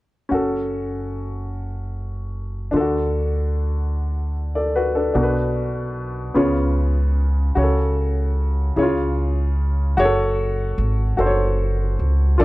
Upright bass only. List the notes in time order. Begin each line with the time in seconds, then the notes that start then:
0.31 F#1
2.73 D2
5.15 B1
6.36 C#2
7.56 C#2
8.76 C#2
9.98 F#1
10.78 G#1
11.19 F#1
11.99 C#2
12.40 D2